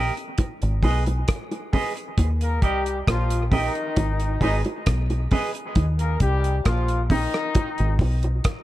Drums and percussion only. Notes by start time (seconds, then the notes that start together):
0.17 closed hi-hat
0.38 kick, closed hi-hat, high bongo
0.62 closed hi-hat
0.83 kick, open hi-hat, high bongo
1.06 closed hi-hat, high bongo
1.28 kick, cross-stick, closed hi-hat
1.51 closed hi-hat, high bongo
1.73 kick, open hi-hat, low bongo
1.97 closed hi-hat
2.18 kick, closed hi-hat, high bongo
2.41 closed hi-hat
2.62 kick, closed hi-hat
2.86 closed hi-hat
3.07 kick, cross-stick, closed hi-hat
3.30 closed hi-hat
3.52 kick, open hi-hat, low bongo
3.75 closed hi-hat
3.96 kick, closed hi-hat, high bongo
4.20 closed hi-hat
4.41 kick, open hi-hat, high bongo
4.65 closed hi-hat, high bongo
4.86 kick, cross-stick, closed hi-hat
5.10 closed hi-hat, high bongo
5.31 kick, open hi-hat, low bongo
5.55 closed hi-hat
5.75 kick, closed hi-hat, high bongo
5.99 closed hi-hat
6.20 kick, closed hi-hat
6.44 closed hi-hat
6.65 kick, cross-stick, closed hi-hat
6.88 closed hi-hat
7.10 kick, open hi-hat, low bongo
7.34 cross-stick, closed hi-hat
7.55 kick, closed hi-hat, high bongo
7.78 closed hi-hat
7.99 kick, open hi-hat, high bongo
8.23 closed hi-hat, high bongo
8.44 kick, cross-stick, closed hi-hat